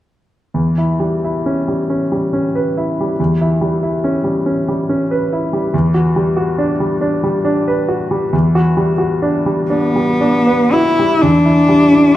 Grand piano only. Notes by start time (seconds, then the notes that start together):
0.54 E2
0.78 E4
1.00 G3
1.24 E4
1.46 C#4
1.68 G3
1.90 C#4
2.12 G3
2.33 C#4
2.55 B4
2.77 E4
3.01 G3
3.20 E2
3.41 E4
3.61 G3
3.83 E4
4.04 C#4
4.24 G3
4.46 C#4
4.68 G3
4.89 C#4
5.11 B4
5.33 E4
5.53 G3
5.74 E2
5.94 F#4
6.16 G3
6.37 F#4
6.58 D4
6.80 G3
7.01 D4
7.24 G3
7.45 D4
7.68 B4
7.88 F#4
8.11 G3
8.33 E2
8.55 F#4
8.77 G3
8.98 F#4
9.22 D4
9.46 G3
9.70 D4
9.96 G3
10.21 D4
10.47 B4
10.73 F#4
10.99 G3
11.23 E2
11.45 E4
11.69 G3
11.92 E4